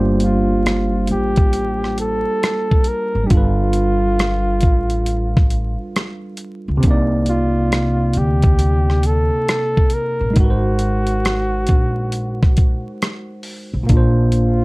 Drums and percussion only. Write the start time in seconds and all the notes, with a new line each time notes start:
0.20 closed hi-hat
0.66 cross-stick, closed hi-hat
1.07 closed hi-hat
1.36 kick, closed hi-hat
1.53 closed hi-hat
1.84 cross-stick
1.98 closed hi-hat
2.43 cross-stick, closed hi-hat
2.71 kick
2.84 closed hi-hat
3.30 kick, closed hi-hat
3.73 closed hi-hat
4.19 cross-stick, closed hi-hat
4.61 kick, closed hi-hat
4.90 closed hi-hat
5.06 closed hi-hat
5.37 kick, cross-stick
5.50 closed hi-hat
5.96 cross-stick, closed hi-hat
6.37 closed hi-hat
6.83 kick, closed hi-hat
7.26 closed hi-hat
7.72 cross-stick, closed hi-hat
8.13 closed hi-hat
8.42 kick, closed hi-hat
8.59 closed hi-hat
8.90 cross-stick
9.03 closed hi-hat
9.48 cross-stick, closed hi-hat
9.77 kick
9.90 closed hi-hat
10.36 kick, closed hi-hat
10.79 closed hi-hat
11.07 closed hi-hat
11.25 cross-stick, closed hi-hat
11.67 kick, closed hi-hat
12.12 closed hi-hat
12.43 kick, cross-stick
12.57 kick, closed hi-hat
13.02 cross-stick, closed hi-hat
13.43 open hi-hat
13.89 kick, closed hi-hat
14.32 closed hi-hat